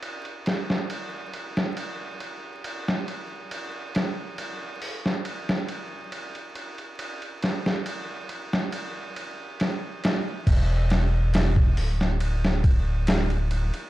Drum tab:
CC |----------------|----------------|----------------|x---------------|
RD |xxx-x-x-x-x-x-x-|x-x-x---x-x-xxxx|xxx-x-x-x-x-x-x-|x-x-x---x-x-xxxx|
HH |----------------|------o---------|----------------|------o---------|
SD |--oo---o-----o--|--o----o-o------|--oo---o----o-o-|--o-o--o-o--o---|
BD |----------------|----------------|----------------|o----o----o-----|